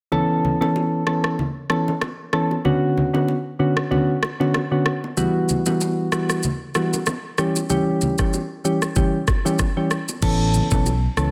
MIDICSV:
0, 0, Header, 1, 4, 480
1, 0, Start_track
1, 0, Tempo, 631579
1, 91, Time_signature, 4, 2, 24, 8
1, 8596, End_track
2, 0, Start_track
2, 0, Title_t, "Synth keys"
2, 0, Program_c, 0, 88
2, 89, Note_on_c, 0, 52, 93
2, 91, Note_on_c, 0, 59, 83
2, 92, Note_on_c, 0, 61, 85
2, 93, Note_on_c, 0, 69, 103
2, 430, Note_off_c, 0, 52, 0
2, 431, Note_off_c, 0, 59, 0
2, 432, Note_off_c, 0, 61, 0
2, 433, Note_off_c, 0, 69, 0
2, 461, Note_on_c, 0, 52, 75
2, 463, Note_on_c, 0, 59, 68
2, 464, Note_on_c, 0, 61, 66
2, 465, Note_on_c, 0, 69, 78
2, 784, Note_off_c, 0, 52, 0
2, 785, Note_off_c, 0, 59, 0
2, 786, Note_off_c, 0, 61, 0
2, 786, Note_off_c, 0, 69, 0
2, 810, Note_on_c, 0, 52, 73
2, 812, Note_on_c, 0, 59, 68
2, 812, Note_on_c, 0, 61, 66
2, 814, Note_on_c, 0, 69, 81
2, 1033, Note_off_c, 0, 52, 0
2, 1034, Note_off_c, 0, 59, 0
2, 1035, Note_off_c, 0, 61, 0
2, 1035, Note_off_c, 0, 69, 0
2, 1290, Note_on_c, 0, 52, 76
2, 1291, Note_on_c, 0, 59, 69
2, 1292, Note_on_c, 0, 61, 67
2, 1294, Note_on_c, 0, 69, 81
2, 1453, Note_off_c, 0, 52, 0
2, 1453, Note_off_c, 0, 59, 0
2, 1454, Note_off_c, 0, 61, 0
2, 1455, Note_off_c, 0, 69, 0
2, 1770, Note_on_c, 0, 52, 73
2, 1772, Note_on_c, 0, 59, 67
2, 1773, Note_on_c, 0, 61, 67
2, 1775, Note_on_c, 0, 69, 82
2, 1933, Note_off_c, 0, 52, 0
2, 1934, Note_off_c, 0, 59, 0
2, 1934, Note_off_c, 0, 61, 0
2, 1935, Note_off_c, 0, 69, 0
2, 2012, Note_on_c, 0, 50, 87
2, 2013, Note_on_c, 0, 59, 81
2, 2015, Note_on_c, 0, 61, 82
2, 2016, Note_on_c, 0, 66, 103
2, 2352, Note_off_c, 0, 50, 0
2, 2353, Note_off_c, 0, 59, 0
2, 2353, Note_off_c, 0, 61, 0
2, 2354, Note_off_c, 0, 66, 0
2, 2382, Note_on_c, 0, 50, 73
2, 2383, Note_on_c, 0, 59, 66
2, 2385, Note_on_c, 0, 61, 64
2, 2387, Note_on_c, 0, 66, 79
2, 2528, Note_off_c, 0, 50, 0
2, 2528, Note_off_c, 0, 59, 0
2, 2529, Note_off_c, 0, 61, 0
2, 2530, Note_off_c, 0, 66, 0
2, 2731, Note_on_c, 0, 50, 76
2, 2731, Note_on_c, 0, 59, 64
2, 2733, Note_on_c, 0, 61, 67
2, 2734, Note_on_c, 0, 66, 80
2, 2893, Note_off_c, 0, 50, 0
2, 2893, Note_off_c, 0, 59, 0
2, 2894, Note_off_c, 0, 61, 0
2, 2895, Note_off_c, 0, 66, 0
2, 2970, Note_on_c, 0, 50, 85
2, 2971, Note_on_c, 0, 59, 80
2, 2973, Note_on_c, 0, 61, 78
2, 2974, Note_on_c, 0, 66, 92
2, 3133, Note_off_c, 0, 50, 0
2, 3133, Note_off_c, 0, 59, 0
2, 3134, Note_off_c, 0, 61, 0
2, 3135, Note_off_c, 0, 66, 0
2, 3342, Note_on_c, 0, 50, 75
2, 3343, Note_on_c, 0, 59, 70
2, 3345, Note_on_c, 0, 61, 72
2, 3346, Note_on_c, 0, 66, 85
2, 3487, Note_off_c, 0, 50, 0
2, 3488, Note_off_c, 0, 59, 0
2, 3489, Note_off_c, 0, 61, 0
2, 3490, Note_off_c, 0, 66, 0
2, 3581, Note_on_c, 0, 50, 75
2, 3583, Note_on_c, 0, 59, 68
2, 3584, Note_on_c, 0, 61, 69
2, 3586, Note_on_c, 0, 66, 84
2, 3727, Note_off_c, 0, 50, 0
2, 3728, Note_off_c, 0, 59, 0
2, 3728, Note_off_c, 0, 61, 0
2, 3730, Note_off_c, 0, 66, 0
2, 3930, Note_on_c, 0, 52, 94
2, 3932, Note_on_c, 0, 55, 85
2, 3933, Note_on_c, 0, 59, 87
2, 3935, Note_on_c, 0, 66, 104
2, 4271, Note_off_c, 0, 52, 0
2, 4272, Note_off_c, 0, 55, 0
2, 4272, Note_off_c, 0, 59, 0
2, 4273, Note_off_c, 0, 66, 0
2, 4304, Note_on_c, 0, 52, 74
2, 4304, Note_on_c, 0, 55, 69
2, 4307, Note_on_c, 0, 59, 67
2, 4308, Note_on_c, 0, 66, 80
2, 4626, Note_off_c, 0, 52, 0
2, 4626, Note_off_c, 0, 55, 0
2, 4627, Note_off_c, 0, 59, 0
2, 4628, Note_off_c, 0, 66, 0
2, 4652, Note_on_c, 0, 52, 72
2, 4653, Note_on_c, 0, 55, 68
2, 4654, Note_on_c, 0, 59, 68
2, 4656, Note_on_c, 0, 66, 82
2, 4874, Note_off_c, 0, 52, 0
2, 4875, Note_off_c, 0, 55, 0
2, 4875, Note_off_c, 0, 59, 0
2, 4876, Note_off_c, 0, 66, 0
2, 5131, Note_on_c, 0, 52, 75
2, 5132, Note_on_c, 0, 55, 67
2, 5133, Note_on_c, 0, 59, 70
2, 5135, Note_on_c, 0, 66, 82
2, 5293, Note_off_c, 0, 52, 0
2, 5294, Note_off_c, 0, 55, 0
2, 5295, Note_off_c, 0, 59, 0
2, 5295, Note_off_c, 0, 66, 0
2, 5611, Note_on_c, 0, 52, 75
2, 5612, Note_on_c, 0, 55, 66
2, 5615, Note_on_c, 0, 61, 70
2, 5616, Note_on_c, 0, 67, 77
2, 5773, Note_off_c, 0, 52, 0
2, 5774, Note_off_c, 0, 55, 0
2, 5775, Note_off_c, 0, 61, 0
2, 5776, Note_off_c, 0, 67, 0
2, 5849, Note_on_c, 0, 52, 88
2, 5851, Note_on_c, 0, 55, 81
2, 5852, Note_on_c, 0, 61, 84
2, 5853, Note_on_c, 0, 67, 101
2, 6190, Note_off_c, 0, 52, 0
2, 6191, Note_off_c, 0, 55, 0
2, 6192, Note_off_c, 0, 61, 0
2, 6193, Note_off_c, 0, 67, 0
2, 6222, Note_on_c, 0, 52, 74
2, 6224, Note_on_c, 0, 55, 65
2, 6225, Note_on_c, 0, 61, 70
2, 6226, Note_on_c, 0, 67, 83
2, 6367, Note_off_c, 0, 52, 0
2, 6368, Note_off_c, 0, 55, 0
2, 6369, Note_off_c, 0, 61, 0
2, 6370, Note_off_c, 0, 67, 0
2, 6570, Note_on_c, 0, 52, 73
2, 6572, Note_on_c, 0, 55, 68
2, 6573, Note_on_c, 0, 61, 68
2, 6574, Note_on_c, 0, 67, 82
2, 6733, Note_off_c, 0, 52, 0
2, 6734, Note_off_c, 0, 55, 0
2, 6734, Note_off_c, 0, 61, 0
2, 6735, Note_off_c, 0, 67, 0
2, 6809, Note_on_c, 0, 52, 87
2, 6811, Note_on_c, 0, 55, 81
2, 6812, Note_on_c, 0, 61, 76
2, 6814, Note_on_c, 0, 67, 93
2, 6972, Note_off_c, 0, 52, 0
2, 6973, Note_off_c, 0, 55, 0
2, 6974, Note_off_c, 0, 61, 0
2, 6975, Note_off_c, 0, 67, 0
2, 7182, Note_on_c, 0, 52, 75
2, 7184, Note_on_c, 0, 55, 68
2, 7185, Note_on_c, 0, 61, 69
2, 7187, Note_on_c, 0, 67, 82
2, 7328, Note_off_c, 0, 52, 0
2, 7328, Note_off_c, 0, 55, 0
2, 7329, Note_off_c, 0, 61, 0
2, 7330, Note_off_c, 0, 67, 0
2, 7421, Note_on_c, 0, 52, 77
2, 7424, Note_on_c, 0, 55, 68
2, 7425, Note_on_c, 0, 61, 72
2, 7426, Note_on_c, 0, 67, 85
2, 7567, Note_off_c, 0, 52, 0
2, 7568, Note_off_c, 0, 55, 0
2, 7569, Note_off_c, 0, 61, 0
2, 7570, Note_off_c, 0, 67, 0
2, 7770, Note_on_c, 0, 52, 91
2, 7772, Note_on_c, 0, 59, 87
2, 7773, Note_on_c, 0, 61, 86
2, 7774, Note_on_c, 0, 69, 105
2, 8111, Note_off_c, 0, 52, 0
2, 8112, Note_off_c, 0, 59, 0
2, 8112, Note_off_c, 0, 61, 0
2, 8113, Note_off_c, 0, 69, 0
2, 8141, Note_on_c, 0, 52, 74
2, 8142, Note_on_c, 0, 59, 66
2, 8144, Note_on_c, 0, 61, 72
2, 8146, Note_on_c, 0, 69, 82
2, 8287, Note_off_c, 0, 52, 0
2, 8288, Note_off_c, 0, 59, 0
2, 8288, Note_off_c, 0, 61, 0
2, 8289, Note_off_c, 0, 69, 0
2, 8489, Note_on_c, 0, 52, 73
2, 8491, Note_on_c, 0, 59, 67
2, 8492, Note_on_c, 0, 61, 69
2, 8494, Note_on_c, 0, 69, 81
2, 8596, Note_off_c, 0, 52, 0
2, 8596, Note_off_c, 0, 59, 0
2, 8596, Note_off_c, 0, 61, 0
2, 8596, Note_off_c, 0, 69, 0
2, 8596, End_track
3, 0, Start_track
3, 0, Title_t, "Fingered electric bass"
3, 0, Program_c, 1, 33
3, 7771, Note_on_c, 1, 33, 101
3, 8051, Note_off_c, 1, 33, 0
3, 8145, Note_on_c, 1, 35, 89
3, 8406, Note_off_c, 1, 35, 0
3, 8489, Note_on_c, 1, 37, 98
3, 8596, Note_off_c, 1, 37, 0
3, 8596, End_track
4, 0, Start_track
4, 0, Title_t, "Drums"
4, 92, Note_on_c, 9, 64, 71
4, 168, Note_off_c, 9, 64, 0
4, 340, Note_on_c, 9, 64, 76
4, 416, Note_off_c, 9, 64, 0
4, 471, Note_on_c, 9, 61, 81
4, 547, Note_off_c, 9, 61, 0
4, 576, Note_on_c, 9, 60, 68
4, 652, Note_off_c, 9, 60, 0
4, 811, Note_on_c, 9, 37, 95
4, 887, Note_off_c, 9, 37, 0
4, 943, Note_on_c, 9, 37, 86
4, 1019, Note_off_c, 9, 37, 0
4, 1057, Note_on_c, 9, 64, 76
4, 1133, Note_off_c, 9, 64, 0
4, 1290, Note_on_c, 9, 37, 94
4, 1305, Note_on_c, 9, 60, 46
4, 1366, Note_off_c, 9, 37, 0
4, 1381, Note_off_c, 9, 60, 0
4, 1429, Note_on_c, 9, 61, 69
4, 1505, Note_off_c, 9, 61, 0
4, 1531, Note_on_c, 9, 37, 88
4, 1534, Note_on_c, 9, 60, 78
4, 1534, Note_on_c, 9, 61, 81
4, 1607, Note_off_c, 9, 37, 0
4, 1610, Note_off_c, 9, 60, 0
4, 1610, Note_off_c, 9, 61, 0
4, 1770, Note_on_c, 9, 37, 88
4, 1846, Note_off_c, 9, 37, 0
4, 1908, Note_on_c, 9, 60, 52
4, 1984, Note_off_c, 9, 60, 0
4, 2013, Note_on_c, 9, 64, 74
4, 2089, Note_off_c, 9, 64, 0
4, 2261, Note_on_c, 9, 64, 77
4, 2337, Note_off_c, 9, 64, 0
4, 2391, Note_on_c, 9, 61, 80
4, 2467, Note_off_c, 9, 61, 0
4, 2496, Note_on_c, 9, 60, 67
4, 2572, Note_off_c, 9, 60, 0
4, 2863, Note_on_c, 9, 37, 91
4, 2939, Note_off_c, 9, 37, 0
4, 2976, Note_on_c, 9, 64, 73
4, 3052, Note_off_c, 9, 64, 0
4, 3212, Note_on_c, 9, 37, 93
4, 3226, Note_on_c, 9, 60, 45
4, 3288, Note_off_c, 9, 37, 0
4, 3302, Note_off_c, 9, 60, 0
4, 3351, Note_on_c, 9, 61, 69
4, 3427, Note_off_c, 9, 61, 0
4, 3453, Note_on_c, 9, 37, 87
4, 3455, Note_on_c, 9, 60, 83
4, 3455, Note_on_c, 9, 61, 80
4, 3529, Note_off_c, 9, 37, 0
4, 3531, Note_off_c, 9, 60, 0
4, 3531, Note_off_c, 9, 61, 0
4, 3691, Note_on_c, 9, 37, 87
4, 3767, Note_off_c, 9, 37, 0
4, 3830, Note_on_c, 9, 60, 54
4, 3906, Note_off_c, 9, 60, 0
4, 3932, Note_on_c, 9, 82, 68
4, 3936, Note_on_c, 9, 64, 74
4, 4008, Note_off_c, 9, 82, 0
4, 4012, Note_off_c, 9, 64, 0
4, 4172, Note_on_c, 9, 82, 58
4, 4183, Note_on_c, 9, 64, 76
4, 4248, Note_off_c, 9, 82, 0
4, 4259, Note_off_c, 9, 64, 0
4, 4301, Note_on_c, 9, 82, 74
4, 4314, Note_on_c, 9, 61, 83
4, 4377, Note_off_c, 9, 82, 0
4, 4390, Note_off_c, 9, 61, 0
4, 4414, Note_on_c, 9, 82, 70
4, 4419, Note_on_c, 9, 60, 71
4, 4490, Note_off_c, 9, 82, 0
4, 4495, Note_off_c, 9, 60, 0
4, 4653, Note_on_c, 9, 37, 100
4, 4654, Note_on_c, 9, 82, 51
4, 4729, Note_off_c, 9, 37, 0
4, 4730, Note_off_c, 9, 82, 0
4, 4785, Note_on_c, 9, 37, 86
4, 4785, Note_on_c, 9, 82, 66
4, 4861, Note_off_c, 9, 37, 0
4, 4861, Note_off_c, 9, 82, 0
4, 4887, Note_on_c, 9, 82, 71
4, 4898, Note_on_c, 9, 64, 77
4, 4963, Note_off_c, 9, 82, 0
4, 4974, Note_off_c, 9, 64, 0
4, 5129, Note_on_c, 9, 82, 52
4, 5130, Note_on_c, 9, 37, 97
4, 5147, Note_on_c, 9, 60, 46
4, 5205, Note_off_c, 9, 82, 0
4, 5206, Note_off_c, 9, 37, 0
4, 5223, Note_off_c, 9, 60, 0
4, 5270, Note_on_c, 9, 82, 70
4, 5272, Note_on_c, 9, 61, 74
4, 5346, Note_off_c, 9, 82, 0
4, 5348, Note_off_c, 9, 61, 0
4, 5368, Note_on_c, 9, 82, 72
4, 5372, Note_on_c, 9, 37, 90
4, 5376, Note_on_c, 9, 60, 77
4, 5376, Note_on_c, 9, 61, 83
4, 5444, Note_off_c, 9, 82, 0
4, 5448, Note_off_c, 9, 37, 0
4, 5452, Note_off_c, 9, 60, 0
4, 5452, Note_off_c, 9, 61, 0
4, 5610, Note_on_c, 9, 82, 43
4, 5611, Note_on_c, 9, 37, 88
4, 5686, Note_off_c, 9, 82, 0
4, 5687, Note_off_c, 9, 37, 0
4, 5745, Note_on_c, 9, 82, 80
4, 5751, Note_on_c, 9, 60, 53
4, 5821, Note_off_c, 9, 82, 0
4, 5827, Note_off_c, 9, 60, 0
4, 5851, Note_on_c, 9, 82, 71
4, 5854, Note_on_c, 9, 64, 74
4, 5927, Note_off_c, 9, 82, 0
4, 5930, Note_off_c, 9, 64, 0
4, 6090, Note_on_c, 9, 82, 55
4, 6100, Note_on_c, 9, 64, 77
4, 6166, Note_off_c, 9, 82, 0
4, 6176, Note_off_c, 9, 64, 0
4, 6220, Note_on_c, 9, 82, 74
4, 6224, Note_on_c, 9, 37, 88
4, 6225, Note_on_c, 9, 36, 96
4, 6231, Note_on_c, 9, 61, 85
4, 6296, Note_off_c, 9, 82, 0
4, 6300, Note_off_c, 9, 37, 0
4, 6301, Note_off_c, 9, 36, 0
4, 6307, Note_off_c, 9, 61, 0
4, 6334, Note_on_c, 9, 82, 67
4, 6336, Note_on_c, 9, 60, 73
4, 6410, Note_off_c, 9, 82, 0
4, 6412, Note_off_c, 9, 60, 0
4, 6574, Note_on_c, 9, 82, 49
4, 6650, Note_off_c, 9, 82, 0
4, 6704, Note_on_c, 9, 37, 93
4, 6704, Note_on_c, 9, 82, 72
4, 6780, Note_off_c, 9, 37, 0
4, 6780, Note_off_c, 9, 82, 0
4, 6807, Note_on_c, 9, 82, 70
4, 6813, Note_on_c, 9, 36, 87
4, 6817, Note_on_c, 9, 64, 74
4, 6883, Note_off_c, 9, 82, 0
4, 6889, Note_off_c, 9, 36, 0
4, 6893, Note_off_c, 9, 64, 0
4, 7049, Note_on_c, 9, 82, 51
4, 7051, Note_on_c, 9, 37, 93
4, 7052, Note_on_c, 9, 36, 86
4, 7067, Note_on_c, 9, 60, 47
4, 7125, Note_off_c, 9, 82, 0
4, 7127, Note_off_c, 9, 37, 0
4, 7128, Note_off_c, 9, 36, 0
4, 7143, Note_off_c, 9, 60, 0
4, 7189, Note_on_c, 9, 61, 71
4, 7191, Note_on_c, 9, 82, 65
4, 7265, Note_off_c, 9, 61, 0
4, 7267, Note_off_c, 9, 82, 0
4, 7287, Note_on_c, 9, 82, 74
4, 7291, Note_on_c, 9, 37, 86
4, 7292, Note_on_c, 9, 36, 85
4, 7294, Note_on_c, 9, 60, 84
4, 7294, Note_on_c, 9, 61, 79
4, 7363, Note_off_c, 9, 82, 0
4, 7367, Note_off_c, 9, 37, 0
4, 7368, Note_off_c, 9, 36, 0
4, 7370, Note_off_c, 9, 60, 0
4, 7370, Note_off_c, 9, 61, 0
4, 7530, Note_on_c, 9, 82, 48
4, 7531, Note_on_c, 9, 37, 93
4, 7606, Note_off_c, 9, 82, 0
4, 7607, Note_off_c, 9, 37, 0
4, 7665, Note_on_c, 9, 82, 80
4, 7669, Note_on_c, 9, 60, 51
4, 7741, Note_off_c, 9, 82, 0
4, 7745, Note_off_c, 9, 60, 0
4, 7769, Note_on_c, 9, 82, 71
4, 7771, Note_on_c, 9, 36, 115
4, 7771, Note_on_c, 9, 49, 91
4, 7773, Note_on_c, 9, 64, 72
4, 7845, Note_off_c, 9, 82, 0
4, 7847, Note_off_c, 9, 36, 0
4, 7847, Note_off_c, 9, 49, 0
4, 7849, Note_off_c, 9, 64, 0
4, 8010, Note_on_c, 9, 82, 59
4, 8020, Note_on_c, 9, 64, 77
4, 8086, Note_off_c, 9, 82, 0
4, 8096, Note_off_c, 9, 64, 0
4, 8139, Note_on_c, 9, 82, 79
4, 8145, Note_on_c, 9, 36, 94
4, 8150, Note_on_c, 9, 61, 86
4, 8215, Note_off_c, 9, 82, 0
4, 8221, Note_off_c, 9, 36, 0
4, 8226, Note_off_c, 9, 61, 0
4, 8254, Note_on_c, 9, 82, 72
4, 8256, Note_on_c, 9, 60, 71
4, 8330, Note_off_c, 9, 82, 0
4, 8332, Note_off_c, 9, 60, 0
4, 8491, Note_on_c, 9, 37, 102
4, 8493, Note_on_c, 9, 82, 50
4, 8499, Note_on_c, 9, 61, 60
4, 8567, Note_off_c, 9, 37, 0
4, 8569, Note_off_c, 9, 82, 0
4, 8575, Note_off_c, 9, 61, 0
4, 8596, End_track
0, 0, End_of_file